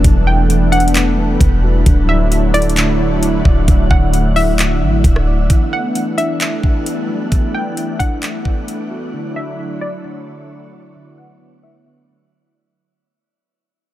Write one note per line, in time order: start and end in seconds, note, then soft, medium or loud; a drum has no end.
0.00 1.83 E3 medium
0.00 1.18 F#3 medium
0.00 1.83 G3 medium
0.00 1.82 A3 medium
0.00 1.83 B3 medium
0.00 0.27 D4 medium
0.00 1.83 D4 medium
0.00 1.82 A4 medium
0.00 1.82 F#6 loud
0.04 1.37 E1 loud
0.04 0.26 E3 medium
0.04 1.84 B4 medium
0.04 kick loud
0.04 closed hi-hat medium
0.27 0.49 E3 medium
0.27 0.70 G5 medium
0.50 0.94 E3 medium
0.50 closed hi-hat medium
0.72 1.86 D4 loud
0.72 0.94 F#5 medium
0.72 closed hi-hat medium
0.80 closed hi-hat medium
0.88 closed hi-hat medium
0.95 1.16 E3 medium
0.95 clap loud
0.95 closed hi-hat medium
1.18 1.86 E3 medium
1.41 1.84 E1 loud
1.41 kick loud
1.41 closed hi-hat medium
1.63 1.86 F#4 medium
1.86 3.41 D1 loud
1.86 2.08 D3 medium
1.86 5.46 D3 medium
1.86 5.46 F#3 medium
1.86 5.46 A3 medium
1.86 5.46 D4 medium
1.86 5.46 E4 medium
1.86 3.66 C#5 medium
1.86 5.46 F#5 medium
1.86 kick loud
1.86 closed hi-hat medium
2.09 2.31 D3 medium
2.09 2.52 E5 medium
2.32 2.76 D3 medium
2.32 closed hi-hat medium
2.54 3.91 E4 medium
2.54 2.76 D5 medium
2.54 closed hi-hat medium
2.62 closed hi-hat medium
2.69 closed hi-hat medium
2.77 2.99 D3 medium
2.77 clap loud
2.77 closed hi-hat medium
3.00 3.67 D3 medium
3.23 closed hi-hat medium
3.45 3.67 D1 loud
3.45 4.82 D5 medium
3.45 kick medium
3.68 3.90 D1 loud
3.68 3.90 D3 medium
3.68 5.48 D5 medium
3.68 kick loud
3.68 closed hi-hat medium
3.91 4.83 D1 loud
3.91 4.12 D3 medium
3.91 4.33 F#5 medium
3.91 kick medium
4.13 4.58 D3 medium
4.13 closed hi-hat medium
4.36 5.50 E4 loud
4.36 4.58 E5 medium
4.36 open hi-hat medium
4.59 4.81 D3 medium
4.59 clap loud
4.59 closed hi-hat medium
4.82 5.03 A1 loud
4.82 5.50 D3 medium
5.04 5.48 D1 loud
5.04 kick loud
5.04 closed hi-hat medium
5.16 cross-stick medium
5.27 5.50 D5 medium
5.50 9.10 E3 medium
5.50 5.71 E3 medium
5.50 9.10 G3 medium
5.50 12.73 A3 medium
5.50 9.10 B3 medium
5.50 9.10 D4 medium
5.50 9.10 E4 medium
5.50 12.73 E4 medium
5.50 9.10 A4 medium
5.50 12.73 D5 medium
5.50 12.73 F#6 medium
5.50 kick loud
5.50 closed hi-hat medium
5.73 5.94 E3 medium
5.73 6.15 F#5 medium
5.95 6.40 E3 medium
5.95 closed hi-hat medium
6.18 7.54 D4 loud
6.18 6.39 E5 medium
6.18 closed hi-hat medium
6.41 6.62 E3 medium
6.41 clap loud
6.41 closed hi-hat medium
6.63 7.30 E3 medium
6.63 kick medium
6.86 closed hi-hat medium
7.09 8.45 F#3 medium
7.32 7.53 E3 medium
7.32 kick loud
7.32 closed hi-hat medium
7.54 7.76 E3 medium
7.54 7.97 G5 medium
7.77 8.21 E3 medium
7.77 closed hi-hat medium
7.99 9.13 D4 loud
7.99 8.21 F#5 medium
7.99 kick medium
7.99 closed hi-hat medium
8.22 8.44 E3 medium
8.22 clap loud
8.22 closed hi-hat medium
8.45 9.13 E3 medium
8.45 kick medium
8.68 closed hi-hat medium
8.91 9.13 F#4 medium
9.13 9.35 D3 medium
9.13 12.74 D3 medium
9.13 12.74 F#3 medium
9.13 10.94 D4 medium
9.13 12.74 E4 medium
9.13 12.74 C#5 medium
9.36 9.58 D3 medium
9.36 9.79 E5 medium
9.59 10.03 D3 medium
9.81 11.18 E4 medium
9.81 10.03 D5 medium
10.04 10.26 D3 medium
10.28 10.94 D3 medium
10.73 12.09 D5 medium
10.95 11.17 D3 medium
10.95 12.75 B3 medium
11.18 11.40 D3 medium
11.18 11.61 F#5 medium
11.41 11.85 D3 medium
11.63 12.77 E4 medium
11.63 11.85 E5 medium
11.87 12.08 D3 medium
12.10 12.77 D3 medium
12.55 12.77 D5 medium